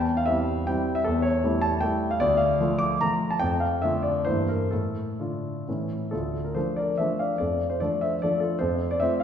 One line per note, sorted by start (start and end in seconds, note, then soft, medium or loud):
0.00 0.26 E2 medium
0.00 0.16 G5 medium
0.17 0.27 F5 medium
0.26 0.63 G3 soft
0.26 0.63 C4 soft
0.26 0.64 E4 soft
0.26 0.66 E5 medium
0.67 1.01 G3 soft
0.67 1.01 C4 soft
0.67 1.02 E4 soft
0.67 0.95 G5 medium
0.95 1.04 E5 medium
1.04 1.43 E2 medium
1.04 1.23 A4 medium
1.22 1.62 C#5 medium
1.44 1.78 G3 medium
1.44 1.79 A3 medium
1.44 1.79 E4 medium
1.61 1.81 A5 medium
1.81 2.16 G3 medium
1.81 2.16 A3 soft
1.81 2.16 E4 medium
1.81 2.09 G5 medium
2.11 2.20 F5 medium
2.20 2.59 D2 medium
2.20 2.39 D5 medium
2.37 2.80 F5 medium
2.60 2.97 F3 soft
2.60 2.98 A3 soft
2.60 2.98 F4 medium
2.79 3.00 D6 medium
3.01 3.38 F3 soft
3.01 3.38 A3 soft
3.01 3.38 F4 medium
3.01 3.31 A#5 loud
3.31 3.41 A5 medium
3.39 3.81 F2 medium
3.39 3.60 G5 medium
3.60 3.82 F5 medium
3.82 4.23 D3 soft
3.82 4.23 A3 soft
3.82 4.23 F4 soft
3.82 4.04 E5 medium
4.03 4.25 D5 medium
4.25 4.70 G2 medium
4.25 4.67 E3 soft
4.25 4.68 A#3 soft
4.25 4.68 E4 soft
4.25 4.48 C5 medium
4.48 4.71 A#4 medium
4.71 5.18 A2 soft
4.71 5.67 A4 medium
5.19 5.64 D3 soft
5.19 5.63 D4 soft
5.19 5.64 F4 soft
5.68 6.12 A2 soft
5.68 6.09 E3 soft
5.68 6.09 C#4 soft
5.68 6.10 E4 soft
6.11 6.55 D2 soft
6.11 6.43 F4 soft
6.11 6.44 A4 medium
6.44 6.56 A#4 medium
6.55 6.94 F3 soft
6.55 6.95 A3 soft
6.55 6.95 D4 soft
6.55 6.76 A4 soft
6.55 6.77 C5 medium
6.76 6.97 A#4 soft
6.76 6.98 D5 medium
6.98 7.35 F3 soft
6.98 7.35 A3 soft
6.98 7.35 D4 soft
6.98 7.17 C5 medium
6.98 7.18 E5 medium
7.19 7.37 D5 soft
7.19 7.39 F5 medium
7.38 7.79 F2 soft
7.38 7.67 A4 soft
7.38 7.69 D5 medium
7.70 7.80 C5 medium
7.80 8.18 F3 soft
7.80 8.18 A3 soft
7.80 8.19 D4 soft
7.80 8.00 A4 medium
7.80 8.01 D5 medium
8.01 8.20 C5 soft
8.01 8.21 E5 medium
8.22 8.58 F3 soft
8.22 8.58 A3 soft
8.22 8.58 D4 soft
8.22 8.39 A4 medium
8.22 8.41 D5 medium
8.40 8.59 F4 soft
8.40 8.59 A4 medium
8.59 9.00 F2 medium
8.59 8.88 A4 medium
8.59 8.90 C5 medium
8.91 9.01 D5 medium
9.00 9.23 A3 soft
9.00 9.23 C4 soft
9.00 9.23 F4 soft
9.00 9.20 C5 medium
9.00 9.21 E5 medium
9.20 9.23 F5 medium